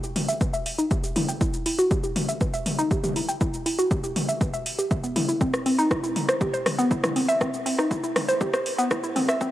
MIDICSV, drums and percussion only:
0, 0, Header, 1, 2, 480
1, 0, Start_track
1, 0, Key_signature, 1, "minor"
1, 0, Tempo, 500000
1, 1353, Time_signature, 4, 2, 24, 8
1, 9132, End_track
2, 0, Start_track
2, 0, Title_t, "Drums"
2, 33, Note_on_c, 9, 82, 57
2, 129, Note_off_c, 9, 82, 0
2, 153, Note_on_c, 9, 46, 94
2, 153, Note_on_c, 9, 47, 72
2, 249, Note_off_c, 9, 46, 0
2, 249, Note_off_c, 9, 47, 0
2, 273, Note_on_c, 9, 82, 55
2, 369, Note_off_c, 9, 82, 0
2, 393, Note_on_c, 9, 36, 120
2, 393, Note_on_c, 9, 82, 56
2, 489, Note_off_c, 9, 36, 0
2, 489, Note_off_c, 9, 82, 0
2, 514, Note_on_c, 9, 82, 55
2, 610, Note_off_c, 9, 82, 0
2, 633, Note_on_c, 9, 46, 100
2, 729, Note_off_c, 9, 46, 0
2, 754, Note_on_c, 9, 82, 55
2, 850, Note_off_c, 9, 82, 0
2, 873, Note_on_c, 9, 36, 116
2, 873, Note_on_c, 9, 82, 59
2, 969, Note_off_c, 9, 36, 0
2, 969, Note_off_c, 9, 82, 0
2, 994, Note_on_c, 9, 82, 56
2, 1090, Note_off_c, 9, 82, 0
2, 1113, Note_on_c, 9, 46, 93
2, 1113, Note_on_c, 9, 47, 86
2, 1209, Note_off_c, 9, 46, 0
2, 1209, Note_off_c, 9, 47, 0
2, 1234, Note_on_c, 9, 82, 54
2, 1330, Note_off_c, 9, 82, 0
2, 1353, Note_on_c, 9, 36, 114
2, 1353, Note_on_c, 9, 82, 53
2, 1449, Note_off_c, 9, 36, 0
2, 1449, Note_off_c, 9, 82, 0
2, 1474, Note_on_c, 9, 82, 56
2, 1570, Note_off_c, 9, 82, 0
2, 1593, Note_on_c, 9, 46, 105
2, 1689, Note_off_c, 9, 46, 0
2, 1714, Note_on_c, 9, 82, 52
2, 1810, Note_off_c, 9, 82, 0
2, 1833, Note_on_c, 9, 36, 122
2, 1833, Note_on_c, 9, 82, 57
2, 1929, Note_off_c, 9, 36, 0
2, 1929, Note_off_c, 9, 82, 0
2, 1954, Note_on_c, 9, 82, 55
2, 2050, Note_off_c, 9, 82, 0
2, 2073, Note_on_c, 9, 46, 95
2, 2073, Note_on_c, 9, 47, 74
2, 2169, Note_off_c, 9, 46, 0
2, 2169, Note_off_c, 9, 47, 0
2, 2195, Note_on_c, 9, 82, 54
2, 2291, Note_off_c, 9, 82, 0
2, 2313, Note_on_c, 9, 36, 122
2, 2313, Note_on_c, 9, 82, 55
2, 2409, Note_off_c, 9, 36, 0
2, 2409, Note_off_c, 9, 82, 0
2, 2434, Note_on_c, 9, 82, 55
2, 2530, Note_off_c, 9, 82, 0
2, 2553, Note_on_c, 9, 46, 105
2, 2553, Note_on_c, 9, 47, 70
2, 2649, Note_off_c, 9, 46, 0
2, 2649, Note_off_c, 9, 47, 0
2, 2675, Note_on_c, 9, 82, 56
2, 2771, Note_off_c, 9, 82, 0
2, 2793, Note_on_c, 9, 36, 121
2, 2794, Note_on_c, 9, 82, 56
2, 2889, Note_off_c, 9, 36, 0
2, 2890, Note_off_c, 9, 82, 0
2, 2915, Note_on_c, 9, 47, 84
2, 2915, Note_on_c, 9, 82, 55
2, 3011, Note_off_c, 9, 47, 0
2, 3011, Note_off_c, 9, 82, 0
2, 3034, Note_on_c, 9, 46, 96
2, 3130, Note_off_c, 9, 46, 0
2, 3155, Note_on_c, 9, 82, 55
2, 3251, Note_off_c, 9, 82, 0
2, 3273, Note_on_c, 9, 36, 116
2, 3274, Note_on_c, 9, 82, 54
2, 3369, Note_off_c, 9, 36, 0
2, 3370, Note_off_c, 9, 82, 0
2, 3395, Note_on_c, 9, 82, 54
2, 3491, Note_off_c, 9, 82, 0
2, 3514, Note_on_c, 9, 46, 102
2, 3610, Note_off_c, 9, 46, 0
2, 3635, Note_on_c, 9, 82, 55
2, 3731, Note_off_c, 9, 82, 0
2, 3753, Note_on_c, 9, 36, 118
2, 3754, Note_on_c, 9, 82, 55
2, 3849, Note_off_c, 9, 36, 0
2, 3850, Note_off_c, 9, 82, 0
2, 3875, Note_on_c, 9, 82, 54
2, 3971, Note_off_c, 9, 82, 0
2, 3994, Note_on_c, 9, 46, 93
2, 3994, Note_on_c, 9, 47, 77
2, 4090, Note_off_c, 9, 46, 0
2, 4090, Note_off_c, 9, 47, 0
2, 4116, Note_on_c, 9, 82, 53
2, 4212, Note_off_c, 9, 82, 0
2, 4233, Note_on_c, 9, 36, 120
2, 4234, Note_on_c, 9, 82, 52
2, 4329, Note_off_c, 9, 36, 0
2, 4330, Note_off_c, 9, 82, 0
2, 4355, Note_on_c, 9, 82, 53
2, 4451, Note_off_c, 9, 82, 0
2, 4473, Note_on_c, 9, 46, 105
2, 4569, Note_off_c, 9, 46, 0
2, 4595, Note_on_c, 9, 82, 55
2, 4691, Note_off_c, 9, 82, 0
2, 4713, Note_on_c, 9, 36, 122
2, 4714, Note_on_c, 9, 82, 54
2, 4809, Note_off_c, 9, 36, 0
2, 4810, Note_off_c, 9, 82, 0
2, 4835, Note_on_c, 9, 82, 53
2, 4931, Note_off_c, 9, 82, 0
2, 4954, Note_on_c, 9, 46, 93
2, 4954, Note_on_c, 9, 47, 92
2, 5050, Note_off_c, 9, 46, 0
2, 5050, Note_off_c, 9, 47, 0
2, 5075, Note_on_c, 9, 82, 52
2, 5171, Note_off_c, 9, 82, 0
2, 5193, Note_on_c, 9, 36, 114
2, 5194, Note_on_c, 9, 82, 52
2, 5289, Note_off_c, 9, 36, 0
2, 5290, Note_off_c, 9, 82, 0
2, 5315, Note_on_c, 9, 37, 53
2, 5315, Note_on_c, 9, 82, 53
2, 5411, Note_off_c, 9, 37, 0
2, 5411, Note_off_c, 9, 82, 0
2, 5433, Note_on_c, 9, 46, 102
2, 5529, Note_off_c, 9, 46, 0
2, 5555, Note_on_c, 9, 82, 53
2, 5651, Note_off_c, 9, 82, 0
2, 5673, Note_on_c, 9, 36, 116
2, 5674, Note_on_c, 9, 37, 54
2, 5674, Note_on_c, 9, 82, 54
2, 5769, Note_off_c, 9, 36, 0
2, 5770, Note_off_c, 9, 37, 0
2, 5770, Note_off_c, 9, 82, 0
2, 5795, Note_on_c, 9, 82, 54
2, 5891, Note_off_c, 9, 82, 0
2, 5914, Note_on_c, 9, 46, 92
2, 5914, Note_on_c, 9, 47, 78
2, 6010, Note_off_c, 9, 46, 0
2, 6010, Note_off_c, 9, 47, 0
2, 6035, Note_on_c, 9, 37, 53
2, 6035, Note_on_c, 9, 82, 53
2, 6131, Note_off_c, 9, 37, 0
2, 6131, Note_off_c, 9, 82, 0
2, 6153, Note_on_c, 9, 36, 117
2, 6154, Note_on_c, 9, 82, 53
2, 6249, Note_off_c, 9, 36, 0
2, 6250, Note_off_c, 9, 82, 0
2, 6276, Note_on_c, 9, 82, 53
2, 6372, Note_off_c, 9, 82, 0
2, 6394, Note_on_c, 9, 37, 53
2, 6394, Note_on_c, 9, 46, 101
2, 6394, Note_on_c, 9, 47, 76
2, 6490, Note_off_c, 9, 37, 0
2, 6490, Note_off_c, 9, 46, 0
2, 6490, Note_off_c, 9, 47, 0
2, 6515, Note_on_c, 9, 82, 55
2, 6611, Note_off_c, 9, 82, 0
2, 6633, Note_on_c, 9, 36, 115
2, 6634, Note_on_c, 9, 82, 53
2, 6729, Note_off_c, 9, 36, 0
2, 6730, Note_off_c, 9, 82, 0
2, 6755, Note_on_c, 9, 37, 53
2, 6755, Note_on_c, 9, 47, 93
2, 6755, Note_on_c, 9, 82, 51
2, 6851, Note_off_c, 9, 37, 0
2, 6851, Note_off_c, 9, 47, 0
2, 6851, Note_off_c, 9, 82, 0
2, 6874, Note_on_c, 9, 46, 94
2, 6970, Note_off_c, 9, 46, 0
2, 6995, Note_on_c, 9, 82, 51
2, 7091, Note_off_c, 9, 82, 0
2, 7113, Note_on_c, 9, 36, 108
2, 7114, Note_on_c, 9, 37, 53
2, 7114, Note_on_c, 9, 82, 50
2, 7209, Note_off_c, 9, 36, 0
2, 7210, Note_off_c, 9, 37, 0
2, 7210, Note_off_c, 9, 82, 0
2, 7235, Note_on_c, 9, 82, 52
2, 7331, Note_off_c, 9, 82, 0
2, 7354, Note_on_c, 9, 46, 101
2, 7450, Note_off_c, 9, 46, 0
2, 7475, Note_on_c, 9, 37, 54
2, 7475, Note_on_c, 9, 82, 50
2, 7571, Note_off_c, 9, 37, 0
2, 7571, Note_off_c, 9, 82, 0
2, 7593, Note_on_c, 9, 36, 113
2, 7594, Note_on_c, 9, 82, 52
2, 7689, Note_off_c, 9, 36, 0
2, 7690, Note_off_c, 9, 82, 0
2, 7715, Note_on_c, 9, 82, 55
2, 7811, Note_off_c, 9, 82, 0
2, 7833, Note_on_c, 9, 37, 56
2, 7833, Note_on_c, 9, 46, 91
2, 7833, Note_on_c, 9, 47, 85
2, 7929, Note_off_c, 9, 37, 0
2, 7929, Note_off_c, 9, 46, 0
2, 7929, Note_off_c, 9, 47, 0
2, 7954, Note_on_c, 9, 82, 53
2, 8050, Note_off_c, 9, 82, 0
2, 8073, Note_on_c, 9, 36, 117
2, 8073, Note_on_c, 9, 82, 53
2, 8169, Note_off_c, 9, 36, 0
2, 8169, Note_off_c, 9, 82, 0
2, 8194, Note_on_c, 9, 37, 55
2, 8194, Note_on_c, 9, 82, 53
2, 8290, Note_off_c, 9, 37, 0
2, 8290, Note_off_c, 9, 82, 0
2, 8313, Note_on_c, 9, 46, 97
2, 8409, Note_off_c, 9, 46, 0
2, 8434, Note_on_c, 9, 82, 55
2, 8530, Note_off_c, 9, 82, 0
2, 8553, Note_on_c, 9, 36, 114
2, 8553, Note_on_c, 9, 37, 57
2, 8553, Note_on_c, 9, 82, 54
2, 8649, Note_off_c, 9, 36, 0
2, 8649, Note_off_c, 9, 37, 0
2, 8649, Note_off_c, 9, 82, 0
2, 8675, Note_on_c, 9, 82, 51
2, 8771, Note_off_c, 9, 82, 0
2, 8793, Note_on_c, 9, 46, 90
2, 8793, Note_on_c, 9, 47, 94
2, 8889, Note_off_c, 9, 46, 0
2, 8889, Note_off_c, 9, 47, 0
2, 8915, Note_on_c, 9, 37, 54
2, 8915, Note_on_c, 9, 82, 52
2, 9011, Note_off_c, 9, 37, 0
2, 9011, Note_off_c, 9, 82, 0
2, 9033, Note_on_c, 9, 36, 107
2, 9034, Note_on_c, 9, 82, 56
2, 9129, Note_off_c, 9, 36, 0
2, 9130, Note_off_c, 9, 82, 0
2, 9132, End_track
0, 0, End_of_file